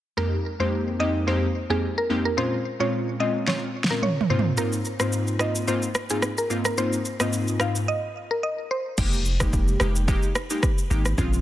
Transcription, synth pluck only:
0.18 0.30 A#4 loud
0.60 0.71 C5 medium
1.00 1.13 D#5 medium
1.28 1.40 C5 medium
1.70 1.81 G#4 medium
1.98 2.08 A#4 medium
2.25 2.36 A#4 medium
2.38 2.50 C5 loud
2.80 2.91 C#5 medium
3.20 3.33 D#5 medium
3.48 3.61 C#5 medium
3.90 4.01 A#4 medium
4.03 4.16 C#5 medium
4.30 4.43 C5 medium
4.58 4.71 A#4 loud
5.01 5.11 C5 medium
5.41 5.53 D#5 medium
5.68 5.81 C5 medium
6.11 6.21 G#4 medium
6.38 6.48 A#4 medium
6.66 6.76 A#4 medium
6.78 6.91 C5 loud
7.21 7.31 D#5 medium
7.61 7.73 F5 medium
7.88 8.01 D#5 medium
8.31 8.41 A#4 medium
8.43 8.56 D#5 medium
8.71 8.84 C5 medium

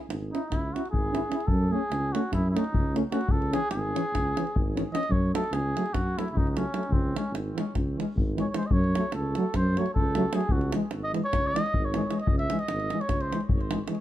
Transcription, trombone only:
0.35 0.42 E4 medium
0.76 0.83 E4 medium
1.15 1.21 E4 medium
1.34 1.40 E4 medium
1.74 1.81 C#4 medium
2.15 2.22 C#4 medium
2.55 2.63 C#4 medium
2.96 3.02 C#4 medium
3.12 3.19 C#4 medium
3.52 3.60 C#4 medium
3.94 4.01 C#4 medium
4.36 4.44 C#4 soft
4.75 4.82 C#4 medium
4.94 5.01 C#4 medium
5.35 5.42 A3 medium
5.77 5.84 A3 medium
6.18 6.25 A3 medium
6.58 6.64 A3 medium
6.76 6.82 A3 soft
7.18 7.24 G#3 medium
7.58 7.65 G#3 medium
8.00 8.07 G#3 medium
8.38 8.45 G#3 medium
8.56 8.62 G#3 medium
8.98 9.04 A3 medium
9.39 9.45 A3 medium
9.78 9.85 A3 medium
10.17 10.23 A3 medium
10.34 10.41 A3 medium
10.75 10.81 G#3 medium
11.14 11.21 G#3 medium
11.55 11.62 G#3 medium
11.96 12.02 G#3 medium
12.11 12.18 G#3 medium
12.51 12.58 G#3 medium
12.93 13.00 G#3 soft
13.33 13.40 G#3 soft
13.71 13.78 G#3 medium
13.90 13.96 G#3 medium

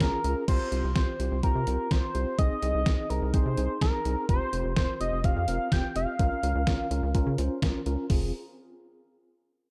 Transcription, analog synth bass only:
0.00 0.11 C#2 loud
0.24 0.35 C#2 loud
0.48 0.59 C2 loud
0.72 0.82 C2 loud
0.84 0.94 C2 medium
0.96 1.06 C2 loud
1.19 1.30 C2 medium
1.31 1.42 C2 loud
1.43 1.54 C2 loud
1.55 1.66 C3 medium
1.67 1.78 C2 loud
1.91 2.02 C2 loud
2.15 2.25 C2 medium
2.39 2.49 C2 loud
2.63 2.73 C2 loud
2.74 2.85 C2 medium
2.87 2.97 C2 loud
3.10 3.21 C2 loud
3.22 3.32 C2 loud
3.34 3.44 C2 loud
3.46 3.56 C3 medium
3.58 3.68 C2 loud
3.82 3.92 C2 loud
4.05 4.16 C2 loud
4.29 4.40 F1 loud
4.53 4.63 F1 loud
4.65 4.75 F1 loud
4.77 4.87 F1 loud
5.00 5.11 F1 medium
5.12 5.23 F1 loud
5.24 5.35 F1 loud
5.36 5.47 F2 loud
5.48 5.59 F1 loud
5.72 5.82 F1 loud
5.96 6.06 F1 loud
6.19 6.30 C#2 loud
6.43 6.54 C#2 loud
6.55 6.66 C#2 loud
6.67 6.78 C#2 loud
6.91 7.01 C#2 loud
7.03 7.13 C#2 loud
7.15 7.25 C#2 loud
7.26 7.37 C#3 medium
7.38 7.49 C#2 loud
7.62 7.73 C#2 loud
7.86 7.97 C#2 loud
8.10 8.32 F1 loud

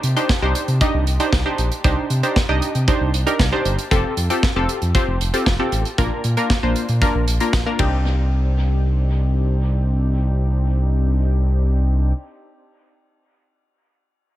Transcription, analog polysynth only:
0.16 0.30 D4 medium
0.16 0.31 D#4 medium
0.16 0.30 G4 medium
0.16 0.30 C5 medium
0.42 0.65 D4 medium
0.42 0.65 D#4 medium
0.42 0.65 G4 medium
0.42 0.65 C5 medium
0.81 1.04 D4 medium
0.81 1.04 D#4 medium
0.81 1.04 G4 medium
0.81 1.04 D#5 medium
1.20 1.34 D4 medium
1.20 1.34 D#4 medium
1.20 1.34 G4 medium
1.20 1.34 C5 loud
1.46 1.69 D4 medium
1.46 1.69 D#4 medium
1.46 1.69 G4 medium
1.46 1.69 C5 medium
1.84 2.08 D4 medium
1.84 2.08 D#4 medium
1.84 2.08 G4 medium
1.84 2.08 C5 loud
2.23 2.37 D4 medium
2.23 2.37 D#4 medium
2.23 2.37 G4 medium
2.23 2.37 C5 medium
2.49 2.72 D4 medium
2.49 2.72 D#4 medium
2.49 2.72 G4 medium
2.49 2.72 D#5 medium
2.88 3.11 D4 medium
2.88 3.11 D#4 medium
2.88 3.11 G4 medium
2.88 3.11 C5 medium
3.26 3.41 D4 medium
3.26 3.41 D#4 medium
3.26 3.40 G4 medium
3.26 3.41 A#4 medium
3.52 3.76 D4 medium
3.52 3.76 D#4 medium
3.52 3.76 G4 medium
3.52 3.76 C5 medium
3.91 4.14 C4 medium
3.91 4.14 F4 medium
3.91 4.14 G4 medium
3.91 4.14 A4 loud
4.30 4.44 C4 medium
4.30 4.44 F4 medium
4.30 4.44 G4 medium
4.30 4.44 A4 medium
4.56 4.79 C4 medium
4.56 4.79 F4 medium
4.56 4.79 G4 medium
4.56 4.79 A4 medium
4.95 5.18 C4 medium
4.95 5.18 F4 medium
4.95 5.18 G4 medium
4.95 5.18 C5 medium
5.34 5.48 C4 medium
5.34 5.48 F4 medium
5.34 5.48 G4 medium
5.34 5.48 A4 medium
5.59 5.83 C4 medium
5.59 5.83 F4 medium
5.59 5.83 G4 medium
5.59 5.83 A4 medium
5.98 6.21 A#3 medium
5.98 6.21 D4 medium
5.98 6.21 F4 medium
5.98 6.21 A#4 medium
6.37 6.51 A#3 medium
6.37 6.51 D4 medium
6.37 6.51 F4 medium
6.37 6.51 A#4 medium
6.63 6.86 A#3 medium
6.63 6.86 D4 medium
6.63 6.86 F4 medium
6.63 6.86 C5 medium
7.02 7.25 A#3 medium
7.02 7.25 D4 medium
7.02 7.25 F4 medium
7.02 7.25 A#4 medium
7.40 7.54 A#3 medium
7.40 7.55 D4 medium
7.40 7.54 F4 medium
7.40 7.54 A#4 medium
7.66 7.79 A#3 medium
7.66 7.78 D4 medium
7.66 7.79 F4 medium
7.66 7.79 A#4 medium
7.79 12.13 C4 medium
7.79 12.13 D4 medium
7.79 12.13 D#4 medium
7.79 12.13 G4 medium

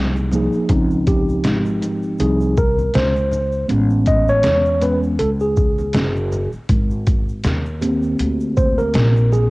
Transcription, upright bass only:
0.00 0.51 C2 medium
0.54 muted upright bass stroke soft
0.69 1.41 C#2 loud
1.45 2.16 G#1 medium
2.20 2.91 C2 loud
2.95 3.66 C#2 medium
3.70 4.41 A1 loud
4.45 5.16 E2 medium
5.20 5.91 C#2 medium
5.94 6.51 F#1 medium
6.54 muted upright bass stroke soft
6.69 7.41 G#1 medium
7.45 8.16 D#2 loud
8.20 8.91 D2 medium
8.95 9.50 A#1 loud

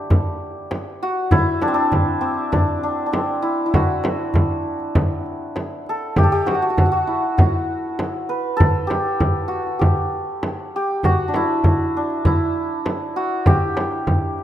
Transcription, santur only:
0.00 1.62 D4 medium
0.00 1.31 E4 medium
0.00 1.09 G4 medium
1.03 3.74 F#4 medium
1.31 3.42 E4 loud
1.62 1.74 D4 medium
1.68 2.20 C4 medium
1.74 2.52 D4 medium
2.21 3.12 C4 medium
2.52 2.83 D4 medium
2.83 3.06 D4 medium
3.06 6.79 D4 medium
3.13 7.13 C4 medium
3.42 3.66 E4 medium
3.66 7.07 E4 medium
3.74 6.24 F#4 medium
5.89 6.23 A4 medium
6.18 6.32 G4 medium
6.24 8.56 A4 medium
6.32 6.52 G4 medium
6.46 6.54 F#4 medium
6.55 6.62 F#4 medium
6.62 6.69 F#4 medium
6.70 6.78 F#4 medium
6.78 6.85 F#4 medium
6.86 6.91 F#4 medium
6.92 7.37 F#4 medium
7.07 10.56 E4 medium
7.38 8.93 F#4 medium
8.29 11.03 B4 medium
8.57 11.49 A4 medium
8.87 9.54 G4 medium
9.48 9.85 F#4 medium
9.79 10.75 G4 medium
10.76 11.11 G4 medium
11.05 13.16 F#4 medium
11.28 11.96 D4 medium
11.36 12.26 E4 medium
11.97 14.44 D4 medium
12.27 14.44 E4 medium
13.16 13.53 F#4 medium
13.47 14.44 G4 medium

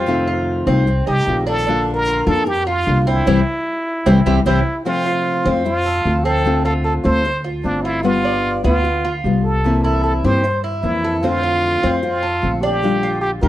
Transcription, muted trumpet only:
0.00 0.63 F4 medium
1.07 1.44 G4 loud
1.48 1.91 A4 medium
1.94 2.29 A#4 loud
2.27 2.49 A4 loud
2.48 2.69 G4 loud
2.67 3.08 F4 loud
3.07 4.46 E4 medium
4.47 4.83 E4 medium
4.85 5.61 F4 loud
5.65 6.26 F4 loud
6.24 6.64 A4 medium
6.65 6.74 A4 medium
6.84 6.94 A4 medium
7.04 7.42 C5 loud
7.64 7.85 D4 medium
7.83 8.06 E4 medium
8.04 8.63 F4 loud
8.63 9.13 F4 loud
9.43 9.81 A4 medium
9.83 10.02 A4 medium
10.04 10.13 A4 medium
10.24 10.61 C5 medium
10.82 11.24 E4 medium
11.22 12.02 F4 loud
12.03 12.63 F4 medium
12.61 13.20 G4 medium
13.21 13.30 G4 medium
13.42 13.48 A#4 medium

